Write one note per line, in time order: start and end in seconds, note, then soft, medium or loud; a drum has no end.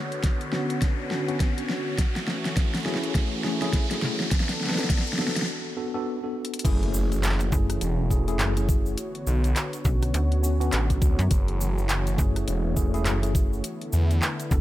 0.00 1.96 D3 medium
0.00 1.96 B3 medium
0.00 4.28 F#4 medium
0.00 1.95 C#5 medium
0.00 riser medium
0.12 closed hi-hat soft
0.23 kick loud
0.23 snare medium
0.23 closed hi-hat medium
0.41 closed hi-hat soft
0.53 1.08 B3 medium
0.53 1.08 C#4 medium
0.53 1.08 D4 medium
0.53 1.08 F#4 medium
0.53 snare medium
0.70 closed hi-hat medium
0.82 kick loud
0.82 snare medium
0.82 closed hi-hat medium
1.11 1.26 B3 medium
1.11 1.26 C#4 medium
1.11 1.26 D4 medium
1.11 1.26 F#4 medium
1.11 snare medium
1.28 1.52 B3 medium
1.28 1.52 C#4 medium
1.28 1.52 D4 medium
1.28 1.52 F#4 loud
1.28 closed hi-hat soft
1.40 kick loud
1.40 snare medium
1.40 closed hi-hat medium
1.58 1.97 B3 medium
1.58 1.97 C#4 medium
1.58 1.97 D4 medium
1.58 1.97 F#4 medium
1.58 closed hi-hat medium
1.69 snare medium
1.98 5.45 E3 medium
1.98 4.29 A3 medium
1.98 4.29 C#4 medium
1.98 kick loud
1.98 snare medium
1.98 closed hi-hat medium
2.16 snare medium
2.16 closed hi-hat soft
2.28 snare loud
2.45 snare medium
2.45 closed hi-hat soft
2.57 kick loud
2.57 snare medium
2.57 closed hi-hat medium
2.75 snare medium
2.75 closed hi-hat soft
2.77 closed hi-hat soft
2.80 closed hi-hat soft
2.83 3.41 A3 medium
2.83 3.41 C#4 medium
2.83 3.41 E4 medium
2.83 3.41 G#4 medium
2.83 snare loud
2.83 closed hi-hat soft
2.95 snare medium
3.03 closed hi-hat medium
3.15 kick loud
3.15 snare loud
3.15 closed hi-hat medium
3.44 3.59 A3 medium
3.44 3.59 C#4 medium
3.44 3.59 E4 medium
3.44 3.59 G#4 medium
3.44 snare medium
3.62 3.86 A3 medium
3.62 3.86 C#4 medium
3.62 3.86 E4 medium
3.62 3.86 G#4 loud
3.62 snare medium
3.62 closed hi-hat soft
3.73 kick loud
3.73 snare loud
3.73 closed hi-hat medium
3.91 4.30 A3 medium
3.91 4.30 C#4 medium
3.91 4.30 E4 medium
3.91 4.30 G#4 medium
3.91 snare medium
3.91 closed hi-hat medium
4.02 snare loud
4.20 snare medium
4.31 5.47 B3 medium
4.31 5.47 D4 medium
4.31 5.47 A4 medium
4.31 kick loud
4.31 snare loud
4.31 closed hi-hat medium
4.40 snare medium
4.49 snare medium
4.49 closed hi-hat soft
4.61 snare soft
4.64 snare medium
4.67 snare medium
4.69 snare medium
4.75 snare loud
4.78 snare medium
4.78 closed hi-hat soft
4.84 snare medium
4.90 kick loud
4.90 snare loud
4.90 closed hi-hat medium
4.98 snare medium
5.07 closed hi-hat soft
5.13 snare medium
5.19 5.74 B3 medium
5.19 5.74 D4 medium
5.19 5.74 F#4 medium
5.19 5.74 A4 medium
5.19 snare loud
5.28 snare loud
5.36 snare loud
5.36 closed hi-hat medium
5.42 snare loud
5.77 5.92 B3 medium
5.77 5.92 D4 medium
5.77 5.92 F#4 medium
5.77 5.92 A4 medium
5.94 6.18 B3 medium
5.94 6.18 D4 medium
5.94 6.18 F#4 medium
5.94 6.18 A4 loud
6.23 6.63 B3 medium
6.23 6.63 D4 medium
6.23 6.63 F#4 medium
6.23 6.63 A4 medium
6.45 closed hi-hat medium
6.54 closed hi-hat medium
6.59 closed hi-hat medium
6.64 7.50 F#1 loud
6.64 8.95 E3 medium
6.64 7.47 A3 loud
6.64 8.95 A3 medium
6.64 7.47 C#4 medium
6.64 7.47 E4 medium
6.64 13.60 F#4 medium
6.64 7.47 G#4 loud
6.64 13.60 C#5 medium
6.64 kick loud
6.64 closed hi-hat medium
6.64 crash loud
6.64 impact medium
6.64 cabasa medium
6.83 closed hi-hat soft
6.94 cabasa loud
7.12 closed hi-hat soft
7.12 cabasa soft
7.23 clap loud
7.23 closed hi-hat medium
7.23 cabasa medium
7.26 clap medium
7.29 clap medium
7.32 clap medium
7.32 clap soft
7.38 clap soft
7.38 closed hi-hat soft
7.38 cabasa soft
7.52 7.79 F#1 loud
7.52 8.08 A3 medium
7.52 8.08 C#4 medium
7.52 8.08 E4 medium
7.52 8.08 G#4 medium
7.52 kick loud
7.52 cabasa loud
7.70 cross-stick medium
7.70 closed hi-hat medium
7.70 cabasa soft
7.81 8.09 E1 loud
7.81 closed hi-hat medium
7.81 cabasa medium
8.10 8.38 E1 loud
8.10 8.25 A3 medium
8.10 8.25 C#4 medium
8.10 8.25 E4 medium
8.10 8.25 G#4 medium
8.10 kick medium
8.10 cabasa medium
8.28 8.52 A3 medium
8.28 8.52 C#4 medium
8.28 8.52 E4 medium
8.28 8.52 G#4 loud
8.28 closed hi-hat soft
8.28 cabasa soft
8.39 8.96 F#1 loud
8.39 clap loud
8.39 closed hi-hat medium
8.39 cabasa soft
8.57 8.96 A3 medium
8.57 8.96 C#4 medium
8.57 8.96 E4 medium
8.57 8.96 G#4 medium
8.57 closed hi-hat medium
8.57 cabasa soft
8.69 kick loud
8.69 cabasa medium
8.86 cabasa soft
8.98 11.29 D3 medium
8.98 11.29 B3 medium
8.98 closed hi-hat medium
8.98 cabasa medium
9.15 closed hi-hat soft
9.27 9.54 B1 loud
9.27 cabasa medium
9.44 closed hi-hat soft
9.44 cabasa soft
9.56 clap loud
9.56 closed hi-hat medium
9.56 cabasa medium
9.73 closed hi-hat soft
9.73 cabasa soft
9.85 10.12 B1 loud
9.85 10.40 B3 medium
9.85 10.40 C#4 medium
9.85 10.40 D4 medium
9.85 10.41 F#4 medium
9.85 kick loud
9.85 cabasa medium
10.02 cross-stick medium
10.02 closed hi-hat medium
10.02 cabasa soft
10.14 10.71 D2 loud
10.14 closed hi-hat medium
10.14 cabasa soft
10.32 closed hi-hat soft
10.43 10.58 B3 medium
10.43 10.58 C#4 medium
10.43 10.58 D4 medium
10.43 10.58 F#4 medium
10.43 cabasa medium
10.60 10.84 B3 medium
10.60 10.84 C#4 medium
10.60 10.84 D4 medium
10.60 10.85 F#4 loud
10.60 closed hi-hat soft
10.60 cabasa soft
10.72 11.00 A1 loud
10.72 clap loud
10.72 closed hi-hat medium
10.72 cabasa medium
10.89 11.29 B3 medium
10.89 11.29 C#4 medium
10.89 11.29 D4 medium
10.89 11.29 F#4 medium
10.89 kick medium
10.89 closed hi-hat medium
10.89 cabasa soft
11.02 11.16 D2 medium
11.02 kick loud
11.02 cabasa medium
11.19 11.29 F#2 loud
11.19 closed hi-hat soft
11.19 cabasa soft
11.31 12.16 F#1 loud
11.31 13.62 E3 medium
11.31 13.62 A3 medium
11.31 kick loud
11.31 closed hi-hat medium
11.31 cabasa medium
11.48 closed hi-hat soft
11.61 cabasa loud
11.78 cabasa soft
11.89 clap loud
11.89 closed hi-hat medium
11.89 cabasa medium
12.07 closed hi-hat soft
12.07 cabasa soft
12.18 12.46 F#1 loud
12.18 12.73 A3 medium
12.18 12.73 C#4 medium
12.18 12.73 E4 medium
12.18 12.73 G#4 medium
12.18 kick loud
12.18 cabasa loud
12.36 cross-stick medium
12.36 closed hi-hat medium
12.36 cabasa soft
12.47 12.75 E1 loud
12.47 closed hi-hat medium
12.47 cabasa medium
12.76 13.04 E1 loud
12.76 12.91 A3 medium
12.76 12.91 C#4 medium
12.76 12.91 E4 medium
12.76 12.91 G#4 medium
12.76 kick medium
12.76 cabasa medium
12.94 13.18 A3 medium
12.94 13.18 C#4 medium
12.94 13.18 E4 medium
12.94 13.18 G#4 loud
12.94 closed hi-hat soft
12.94 cabasa soft
13.06 13.62 F#1 loud
13.06 clap loud
13.06 closed hi-hat medium
13.06 cabasa medium
13.23 13.62 A3 medium
13.23 13.62 C#4 medium
13.23 13.62 E4 medium
13.23 13.62 G#4 medium
13.23 closed hi-hat medium
13.23 cabasa soft
13.35 kick loud
13.35 cabasa loud
13.53 cabasa soft
13.64 14.61 D3 medium
13.64 14.61 A3 medium
13.64 14.61 B3 medium
13.64 14.61 E4 medium
13.64 closed hi-hat medium
13.64 cabasa medium
13.81 closed hi-hat soft
13.93 14.20 E2 loud
13.93 cabasa medium
14.11 closed hi-hat soft
14.11 cabasa soft
14.22 clap loud
14.22 cabasa medium
14.40 closed hi-hat soft
14.40 cabasa soft
14.51 14.61 E1 loud
14.51 14.61 B3 medium
14.51 14.61 D4 medium
14.51 14.61 F#4 medium
14.51 14.61 A4 medium
14.51 kick loud
14.51 cabasa loud